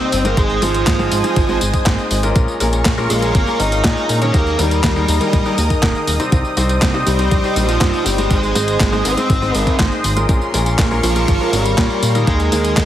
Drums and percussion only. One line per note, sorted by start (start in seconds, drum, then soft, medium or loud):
0.00 tambourine soft
0.12 open hi-hat medium
0.12 tambourine medium
0.25 closed hi-hat medium
0.25 tambourine soft
0.37 kick loud
0.37 closed hi-hat medium
0.37 tambourine soft
0.50 tambourine soft
0.62 open hi-hat loud
0.62 tambourine medium
0.74 closed hi-hat medium
0.74 tambourine soft
0.87 kick loud
0.87 snare loud
0.87 clap loud
0.87 closed hi-hat medium
0.87 tambourine soft
0.99 tambourine soft
1.12 open hi-hat medium
1.12 tambourine medium
1.24 closed hi-hat medium
1.24 tambourine soft
1.36 kick loud
1.36 closed hi-hat medium
1.36 tambourine soft
1.49 tambourine soft
1.61 open hi-hat loud
1.61 tambourine medium
1.74 kick medium
1.74 closed hi-hat medium
1.74 tambourine soft
1.86 kick loud
1.86 snare loud
1.86 clap loud
1.86 closed hi-hat medium
1.86 tambourine soft
1.98 tambourine soft
2.11 open hi-hat medium
2.11 tambourine medium
2.23 closed hi-hat medium
2.23 tambourine soft
2.36 kick loud
2.36 closed hi-hat medium
2.36 tambourine soft
2.48 tambourine soft
2.60 open hi-hat medium
2.60 tambourine medium
2.73 closed hi-hat medium
2.73 tambourine soft
2.85 kick loud
2.85 snare loud
2.85 clap loud
2.85 closed hi-hat medium
2.85 tambourine soft
2.98 tambourine soft
3.10 open hi-hat medium
3.10 tambourine medium
3.22 closed hi-hat medium
3.22 tambourine soft
3.35 kick loud
3.35 closed hi-hat medium
3.35 tambourine soft
3.47 tambourine soft
3.60 open hi-hat loud
3.60 tambourine medium
3.72 closed hi-hat medium
3.72 tambourine soft
3.84 kick loud
3.84 snare loud
3.84 clap loud
3.84 closed hi-hat medium
3.84 tambourine soft
3.97 tambourine soft
4.09 open hi-hat medium
4.09 tambourine medium
4.22 closed hi-hat medium
4.22 tambourine soft
4.34 kick loud
4.34 closed hi-hat medium
4.34 tambourine soft
4.47 tambourine soft
4.59 open hi-hat loud
4.59 tambourine medium
4.71 closed hi-hat medium
4.71 tambourine soft
4.84 kick loud
4.84 snare loud
4.84 clap loud
4.84 closed hi-hat medium
4.84 tambourine soft
4.96 tambourine soft
5.08 open hi-hat medium
5.08 tambourine medium
5.21 closed hi-hat medium
5.21 tambourine soft
5.33 kick loud
5.33 closed hi-hat medium
5.33 tambourine soft
5.46 tambourine soft
5.58 open hi-hat loud
5.58 tambourine medium
5.70 kick medium
5.70 closed hi-hat medium
5.70 tambourine soft
5.83 kick loud
5.83 snare loud
5.83 clap loud
5.83 closed hi-hat medium
5.83 tambourine soft
5.95 tambourine soft
6.07 open hi-hat medium
6.07 tambourine medium
6.20 closed hi-hat medium
6.20 tambourine soft
6.32 kick loud
6.32 closed hi-hat medium
6.32 tambourine soft
6.45 tambourine soft
6.57 open hi-hat loud
6.57 tambourine medium
6.69 closed hi-hat medium
6.69 tambourine soft
6.82 kick loud
6.82 snare loud
6.82 clap loud
6.82 closed hi-hat medium
6.82 tambourine soft
6.94 tambourine soft
7.07 open hi-hat medium
7.07 tambourine medium
7.19 closed hi-hat medium
7.19 tambourine soft
7.31 kick loud
7.31 closed hi-hat medium
7.31 tambourine soft
7.44 tambourine soft
7.56 open hi-hat loud
7.56 tambourine medium
7.69 closed hi-hat medium
7.69 tambourine soft
7.81 kick loud
7.81 snare loud
7.81 clap loud
7.81 closed hi-hat medium
7.81 tambourine soft
7.93 tambourine soft
8.06 open hi-hat medium
8.06 tambourine medium
8.18 closed hi-hat medium
8.18 tambourine soft
8.31 kick loud
8.31 closed hi-hat medium
8.31 tambourine soft
8.43 tambourine soft
8.55 open hi-hat loud
8.55 tambourine medium
8.68 closed hi-hat medium
8.68 tambourine soft
8.80 kick loud
8.80 snare loud
8.80 clap loud
8.80 closed hi-hat medium
8.80 tambourine soft
8.93 tambourine soft
9.05 open hi-hat loud
9.05 tambourine medium
9.17 closed hi-hat medium
9.17 tambourine soft
9.30 kick loud
9.30 closed hi-hat medium
9.30 tambourine soft
9.42 tambourine soft
9.55 open hi-hat loud
9.55 tambourine medium
9.67 kick medium
9.67 closed hi-hat medium
9.67 tambourine soft
9.79 kick loud
9.79 snare loud
9.79 clap loud
9.79 closed hi-hat medium
9.79 tambourine soft
9.92 tambourine soft
10.04 open hi-hat loud
10.04 tambourine medium
10.17 closed hi-hat medium
10.17 tambourine soft
10.29 kick loud
10.29 closed hi-hat medium
10.29 tambourine soft
10.41 tambourine soft
10.54 open hi-hat loud
10.54 tambourine medium
10.66 closed hi-hat medium
10.66 tambourine soft
10.79 kick loud
10.79 snare loud
10.79 clap loud
10.79 closed hi-hat medium
10.79 tambourine soft
10.91 tambourine soft
11.03 open hi-hat loud
11.03 tambourine medium
11.16 closed hi-hat medium
11.16 tambourine soft
11.28 kick loud
11.28 closed hi-hat medium
11.28 tambourine soft
11.41 tambourine soft
11.53 open hi-hat loud
11.53 tambourine medium
11.66 closed hi-hat medium
11.66 tambourine soft
11.78 kick loud
11.78 snare loud
11.78 clap loud
11.78 closed hi-hat medium
11.78 tambourine soft
11.90 tambourine soft
12.03 open hi-hat loud
12.03 tambourine medium
12.15 closed hi-hat medium
12.15 tambourine soft
12.27 kick loud
12.27 closed hi-hat medium
12.27 tambourine soft
12.40 closed hi-hat soft
12.40 tambourine soft
12.52 open hi-hat loud
12.52 tambourine medium
12.65 closed hi-hat medium
12.65 tambourine soft
12.77 kick loud
12.77 snare loud
12.77 clap loud
12.77 closed hi-hat medium
12.77 tambourine soft